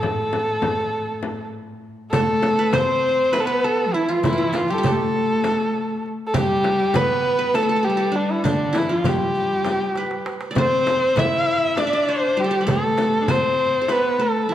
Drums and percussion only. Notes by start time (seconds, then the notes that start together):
0.03 frame drum
0.33 frame drum
0.62 frame drum
1.23 frame drum
2.13 riq, frame drum, darbuka dum
2.43 riq, darbuka tek, frame drum
2.58 riq
2.73 riq, frame drum, darbuka dum
3.33 riq, darbuka tek, frame drum
3.64 darbuka ka
3.94 darbuka ka
4.23 riq, darbuka dum, frame drum
4.53 riq, darbuka tek, frame drum
4.68 riq
4.83 riq, frame drum, darbuka dum
5.14 darbuka ka
5.44 riq, darbuka tek, frame drum
5.75 darbuka ka
6.06 darbuka ka
6.34 riq, frame drum, darbuka dum
6.64 darbuka tek, frame drum
6.80 riq, darbuka ka
6.94 riq, frame drum, darbuka dum
7.26 darbuka ka
7.54 riq, darbuka tek, frame drum
7.86 darbuka ka
8.15 darbuka ka
8.45 riq, frame drum, darbuka dum
8.75 riq, darbuka tek, frame drum
8.89 riq, darbuka ka
9.04 riq, darbuka dum, frame drum
9.35 riq, darbuka ka
9.65 riq, darbuka tek, frame drum
9.96 riq, darbuka tek
10.11 darbuka ka
10.26 riq, darbuka tek
10.41 riq, darbuka ka
10.55 riq, frame drum, darbuka dum
10.86 riq, darbuka tek, frame drum
11.01 riq, darbuka ka
11.16 riq, frame drum, darbuka dum
11.47 darbuka ka
11.77 riq, darbuka tek, frame drum
12.08 darbuka ka
12.39 darbuka ka
12.67 riq, frame drum, darbuka dum
12.98 riq, darbuka tek, frame drum
13.13 riq, darbuka ka
13.28 riq, darbuka dum, frame drum
13.59 darbuka ka
13.88 riq, darbuka tek, frame drum
14.18 darbuka ka